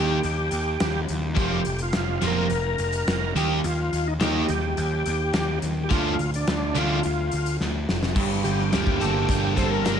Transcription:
Already playing: D#2 D#3 A#3 D#4 G4
0.23 D#2, closed hi-hat
0.51 D#2, closed hi-hat
0.80 D#2, snare, closed hi-hat
1.09 D#2, closed hi-hat
1.36 F1 F2 C3 F3 A#3 C4 F4 G4, kick, closed hi-hat
1.65 F1, closed hi-hat
1.79 F4, closed hi-hat
1.93 F1, snare, closed hi-hat
1.97 F4
2.21 F1 F2 C3 F3 A#3 C4 F4, closed hi-hat
2.27 A#4
2.50 F1, closed hi-hat
2.78 F1, closed hi-hat
2.93 closed hi-hat
3.07 F1, snare, closed hi-hat
3.35 D#2 D#3 A#3 D#4 G4, closed hi-hat
3.64 D#2 F4, closed hi-hat
3.92 D#2, closed hi-hat
4.07 D#4
4.19 D#2 D#3 A#3 D#4, snare, closed hi-hat
4.24 D#4 G4
4.49 D#2 G4, closed hi-hat
4.77 D#2, closed hi-hat
5.06 D#2, closed hi-hat
5.33 D#2, snare, closed hi-hat
5.62 D#2, closed hi-hat
5.83 G4
5.90 D2 D3 A3 D4 F4, kick, closed hi-hat
6.19 D2, closed hi-hat
6.34 D4, closed hi-hat
6.47 D2, snare, closed hi-hat
6.75 D2 D3 A3 D4 F4, closed hi-hat
7.03 D2 F4, closed hi-hat
7.32 D2, closed hi-hat
7.46 closed hi-hat
7.60 D2, snare
7.89 F1, snare
8.03 snare
8.16 G1 G2, kick, crash
8.44 G1 D3 G4, closed hi-hat
8.59 snare
8.71 D2 G3 A#3 G4, snare, closed hi-hat
8.87 kick
9.00 G1 A#3 A4, closed hi-hat
9.28 G1 A#3 D4, kick, closed hi-hat
9.56 G1 G3 A4 C5, kick, closed hi-hat
9.65 A4
9.70 A#4
9.85 G1 A#3 D4, snare, closed hi-hat

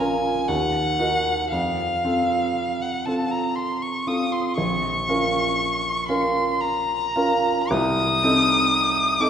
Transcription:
Already playing: A#1
0.00 C#4 F4 A#4 G#5
0.48 D#2 F#5
0.99 D#4 F#4 A#4
1.51 F2 F5
2.04 C4 F4 A4
2.82 F#5
3.06 C4 F4 A4 A5
3.31 A#5
3.55 C6
3.82 C#6
4.07 C4 F4 A4 D#6
4.33 C6
4.58 A#1 C#6
5.09 C#4 F4 A#4
6.09 C#4 F4 A#4 C6
6.61 A#5
7.16 C#4 F4 A#4
7.71 C2 D#6
8.23 C4 D#4 A4
9.20 C4 D#4 A4 D6

